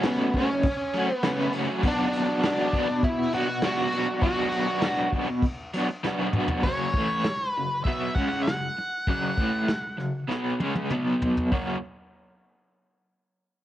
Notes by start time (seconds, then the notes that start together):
0.03 F#2 C#3 F#3 A3 B3 C#4, snare, crash
0.07 F#4
0.33 F#3 A3 C#4, kick, crash
0.37 F#4
0.51 muted overdriven electric guitar stroke
0.63 kick, crash
0.93 F#3 A3 C#4, crash
0.98 F#4
1.11 B3, muted overdriven electric guitar stroke
1.23 F#2 C#3 F#3 A3 C#4, snare, crash
1.28 F#4
1.40 F#3 A3 C#4 F#4
1.53 F#3 A3 C#4, crash
1.58 F#4
1.68 F#3 A3 C#4 F#4
1.83 B2 F#3 B3 D4 F#4, kick, crash
1.88 D4
2.13 crash
2.29 B3 D4 F#4
2.43 B2 F#3 B3 D4 F#4, snare, crash
2.73 F#3 B3 D4 F#4, kick, crash
2.90 muted overdriven electric guitar stroke
3.03 E4, kick, crash
3.32 F#3 B3 D4 F#4, crash
3.37 F#4
3.49 muted overdriven electric guitar stroke
3.62 B2 F#3 F#4, snare, crash
3.66 B3 D4 F#4
3.78 B3 D4 F#4
3.92 F#3 B3 D4 F#4, crash
4.08 B3 D4 F#4
4.21 B2 F#3 B3 F#4, kick, crash
4.25 D4 F#4
4.52 crash
4.67 B3 D4 F#4
4.82 B2 F#3 B3 D4, snare, crash
4.86 F#4
5.13 F#3 B3 D4 F#4, kick, crash
5.29 muted overdriven electric guitar stroke
5.42 kick, crash
5.73 F#3 B3 D4, crash
5.77 F#4
5.90 muted overdriven electric guitar stroke
6.04 B2 F#3 B3 D4 F#4, snare
6.20 B3 D4 F#4
6.33 F#3 B3, mid tom
6.38 D4 F#4
6.48 F#4, floor tom
6.53 B3 D4
6.63 F#2 C#3 F#3 C#5, kick, crash
6.94 A2 E3, kick
6.98 A3
7.24 muted overdriven electric guitar stroke, snare, open hi-hat
7.49 B4
7.57 F#2 C#3
7.84 B2 F#3 B3 E5, kick, open hi-hat
8.15 C#3 G#3 C#4 F#5, kick
8.29 F#5, snare
8.43 F#5, open hi-hat
8.47 F#2 C#3, snare
8.78 muted overdriven electric guitar stroke
9.07 F#2 C#3 F#3, kick, open hi-hat
9.38 A2 E3 A3, kick
9.68 muted overdriven electric guitar stroke, snare, open hi-hat
9.98 F#2 C#3, snare
10.28 B2 F#3 B3, snare
10.60 C#3 G#3 C#4, high tom
10.75 high tom
10.90 B2 F#3 B3, mid tom
11.22 floor tom
11.37 floor tom
11.52 F#2 C#3 F#3 A#3 C#4 F#4, kick, crash